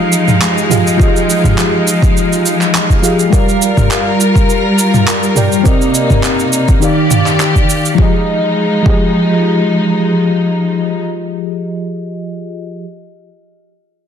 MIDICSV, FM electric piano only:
0, 0, Header, 1, 2, 480
1, 0, Start_track
1, 0, Tempo, 582524
1, 820, Time_signature, 4, 2, 24, 8
1, 11597, End_track
2, 0, Start_track
2, 0, Title_t, "FM electric piano"
2, 0, Program_c, 0, 5
2, 0, Control_c, 0, 64, 127
2, 0, Note_on_c, 0, 53, 78
2, 0, Note_on_c, 0, 65, 70
2, 0, Note_on_c, 0, 67, 74
2, 0, Note_on_c, 0, 68, 73
2, 0, Note_on_c, 0, 75, 84
2, 545, Note_off_c, 0, 53, 0
2, 550, Note_off_c, 0, 65, 0
2, 555, Note_off_c, 0, 67, 0
2, 560, Note_off_c, 0, 68, 0
2, 565, Note_off_c, 0, 75, 0
2, 573, Note_on_c, 0, 53, 64
2, 576, Note_on_c, 0, 65, 66
2, 582, Note_on_c, 0, 67, 64
2, 587, Note_on_c, 0, 68, 62
2, 591, Note_on_c, 0, 77, 76
2, 789, Note_off_c, 0, 53, 0
2, 791, Note_off_c, 0, 65, 0
2, 794, Note_off_c, 0, 67, 0
2, 796, Note_off_c, 0, 68, 0
2, 798, Note_off_c, 0, 77, 0
2, 804, Note_on_c, 0, 53, 74
2, 815, Note_on_c, 0, 65, 71
2, 825, Note_on_c, 0, 67, 73
2, 834, Note_on_c, 0, 68, 69
2, 844, Note_on_c, 0, 75, 89
2, 2465, Note_off_c, 0, 53, 0
2, 2470, Note_off_c, 0, 65, 0
2, 2475, Note_off_c, 0, 67, 0
2, 2480, Note_off_c, 0, 68, 0
2, 2485, Note_off_c, 0, 75, 0
2, 2490, Note_on_c, 0, 53, 69
2, 2495, Note_on_c, 0, 65, 59
2, 2500, Note_on_c, 0, 67, 63
2, 2504, Note_on_c, 0, 68, 64
2, 2509, Note_on_c, 0, 77, 78
2, 2708, Note_off_c, 0, 53, 0
2, 2710, Note_off_c, 0, 65, 0
2, 2713, Note_off_c, 0, 67, 0
2, 2715, Note_off_c, 0, 68, 0
2, 2718, Note_off_c, 0, 77, 0
2, 2720, Note_on_c, 0, 55, 79
2, 2731, Note_on_c, 0, 67, 73
2, 2739, Note_on_c, 0, 70, 72
2, 2749, Note_on_c, 0, 74, 71
2, 2750, Control_c, 0, 64, 0
2, 2759, Note_on_c, 0, 77, 84
2, 2907, Control_c, 0, 64, 127
2, 4383, Note_off_c, 0, 55, 0
2, 4388, Note_off_c, 0, 67, 0
2, 4392, Note_off_c, 0, 70, 0
2, 4398, Note_off_c, 0, 74, 0
2, 4402, Note_off_c, 0, 77, 0
2, 4411, Note_on_c, 0, 55, 64
2, 4416, Note_on_c, 0, 67, 60
2, 4422, Note_on_c, 0, 70, 58
2, 4425, Note_on_c, 0, 74, 60
2, 4431, Note_on_c, 0, 79, 75
2, 4628, Note_off_c, 0, 55, 0
2, 4631, Note_off_c, 0, 67, 0
2, 4634, Note_off_c, 0, 70, 0
2, 4635, Note_off_c, 0, 74, 0
2, 4639, Note_off_c, 0, 79, 0
2, 4641, Note_on_c, 0, 60, 79
2, 4652, Note_on_c, 0, 67, 72
2, 4662, Note_on_c, 0, 70, 71
2, 4671, Control_c, 0, 64, 0
2, 4671, Note_on_c, 0, 74, 72
2, 4681, Note_on_c, 0, 75, 80
2, 4828, Control_c, 0, 64, 127
2, 5597, Note_off_c, 0, 60, 0
2, 5599, Note_on_c, 0, 51, 73
2, 5602, Note_off_c, 0, 67, 0
2, 5607, Note_off_c, 0, 70, 0
2, 5609, Note_on_c, 0, 63, 67
2, 5612, Note_off_c, 0, 74, 0
2, 5617, Note_off_c, 0, 75, 0
2, 5618, Note_on_c, 0, 67, 72
2, 5629, Note_on_c, 0, 74, 70
2, 5632, Control_c, 0, 64, 0
2, 5638, Note_on_c, 0, 77, 78
2, 5781, Control_c, 0, 64, 127
2, 6329, Note_off_c, 0, 51, 0
2, 6334, Note_off_c, 0, 63, 0
2, 6338, Note_off_c, 0, 67, 0
2, 6344, Note_off_c, 0, 74, 0
2, 6349, Note_off_c, 0, 77, 0
2, 6549, Note_on_c, 0, 53, 73
2, 6565, Note_on_c, 0, 65, 70
2, 6578, Note_on_c, 0, 67, 67
2, 6589, Control_c, 0, 64, 0
2, 6593, Note_on_c, 0, 68, 68
2, 6608, Note_on_c, 0, 75, 78
2, 6703, Note_off_c, 0, 53, 0
2, 6712, Note_off_c, 0, 65, 0
2, 6719, Note_off_c, 0, 67, 0
2, 6724, Control_c, 0, 64, 127
2, 6727, Note_off_c, 0, 68, 0
2, 6735, Note_off_c, 0, 75, 0
2, 7271, Note_on_c, 0, 53, 77
2, 7283, Note_on_c, 0, 65, 65
2, 7299, Note_on_c, 0, 67, 66
2, 7314, Note_on_c, 0, 68, 66
2, 7327, Note_on_c, 0, 75, 79
2, 9688, Note_off_c, 0, 53, 0
2, 9694, Note_off_c, 0, 65, 0
2, 9702, Note_off_c, 0, 67, 0
2, 9710, Note_off_c, 0, 68, 0
2, 9716, Note_off_c, 0, 75, 0
2, 10570, Control_c, 0, 64, 0
2, 11597, End_track
0, 0, End_of_file